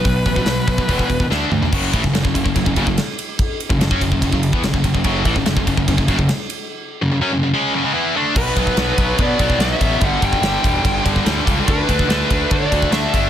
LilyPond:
<<
  \new Staff \with { instrumentName = "Lead electric guitar" } { \time 4/4 \key fis \phrygian \tempo 4 = 144 b'2. r4 | r1 | r1 | r1 |
r1 | b'2 d''4 e''4 | fis''8 g''2 r4. | b'2 d''4 e''4 | }
  \new Staff \with { instrumentName = "Distorted electric guitar" } { \clef bass \time 4/4 \key fis \phrygian <b, fis>8 <b, fis>16 <b, fis>16 <b, fis>8 <b, fis>16 <b, fis>16 <e, b, e>8 <e, b,>16 <e, b,>16 <d a d'>8 <d a>16 <d a>16 | <fis, cis fis>8 <a, e>16 <fis, cis>16 <fis, cis>16 <fis, cis>16 <fis, cis>16 <fis, cis>16 <fis, cis>16 <fis, cis>16 <fis, cis>16 <fis, cis>16 r4 | r8. <fis, cis>16 <fis, cis>16 <fis cis'>16 <fis, cis>16 <fis, cis>16 <fis, cis>16 <fis, cis>8 <e b>16 <fis, cis>16 <fis, cis>16 <fis, cis>16 <fis, cis>16 | <fis, cis fis>8 <a, e>16 <fis, cis>16 <fis, cis>16 <fis, cis>16 <fis, cis>16 <fis, cis>16 <fis, cis>16 <fis, cis>16 <fis, cis>16 <fis, cis>16 r4 |
r8. <fis, cis>16 <fis, cis>16 <fis cis'>16 <fis, cis>16 <fis, cis>16 <cis gis cis'>8 <fis, cis>16 <cis gis>16 <e b e'>8 <d a d'>8 | <b, fis b>8 <b, fis b>8 <b, fis b>8 <b, fis b>8 <b, fis b>8 <b, fis b>8 <b, fis b>8 <b, fis b>8 | <g, d g>8 <g, d g>8 <g, d g>8 <g, d g>8 <g, d g>8 <g, d g>8 <g, d g>8 <g, d g>8 | <d a d'>8 <d a d'>8 <d a d'>8 <d a d'>8 <d a d'>8 <d a d'>8 <d a d'>8 <d a d'>8 | }
  \new Staff \with { instrumentName = "Picked electric bass" } { \clef bass \time 4/4 \key fis \phrygian b,,8 a,,8 b,,8 b,,8 e,,8 e,,8 d,8 d,8 | fis,,8 a,,16 fis,,16 fis,,16 fis,,16 fis,,16 fis,,16 fis,,16 fis,,16 fis,,16 fis,,16 r4 | r8. fis,,16 fis,,16 fis,16 fis,,16 fis,,16 fis,,16 fis,,8 e,16 fis,,16 fis,,16 fis,,16 fis,,16 | fis,,8 a,,16 fis,,16 fis,,16 fis,,16 fis,,16 fis,,16 fis,,16 fis,,16 fis,,16 fis,,16 r4 |
r1 | b,,8 b,,8 b,,8 b,,8 b,8 b,,8 b,,8 a,,8 | g,,8 g,,8 g,,8 e,,8 g,,8 g,,8 d,8 cis,8 | d,8 d,8 d,8 d,8 d8 d,8 d,8 g,,8 | }
  \new DrumStaff \with { instrumentName = "Drums" } \drummode { \time 4/4 <hho bd>8 <hho bd>16 bd16 <hho sn>8 <hho bd>16 bd16 <hho bd>16 bd16 <hho bd>16 bd16 sn8 toml16 tomfh16 | <cymc bd>8 <bd cymr>16 bd16 <cymr sn>16 bd16 <bd cymr>16 bd16 <bd cymr>16 bd16 <bd cymr>16 bd16 <cymr sn>8 cymr8 | <bd cymr>8 cymr16 bd16 <cymr sn>16 bd16 <bd cymr>16 bd16 <bd cymr>16 bd16 cymr16 bd16 <cymr sn>16 bd16 <bd cymr>16 bd16 | <bd cymr>8 <bd cymr>16 bd16 <cymr sn>16 bd16 <bd cymr>16 bd16 <bd cymr>16 bd16 <bd cymr>16 bd16 <cymr sn>8 cymr8 |
r4 r4 r4 r4 | <cymc bd>8 <bd cymr>16 bd16 <cymr sn>8 <bd cymr>8 <bd cymr>8 <bd cymr>16 bd16 <cymr sn>8 <bd cymr>8 | <bd cymr>8 <bd cymr>16 bd16 <cymr sn>8 <bd cymr>8 <bd cymr>8 <bd cymr>16 bd16 <cymr sn>8 <bd cymr>8 | <bd cymr>8 <bd cymr>16 bd16 <cymr sn>8 <bd cymr>8 <bd cymr>8 <bd cymr>16 bd16 <cymr sn>8 <bd cymr>8 | }
>>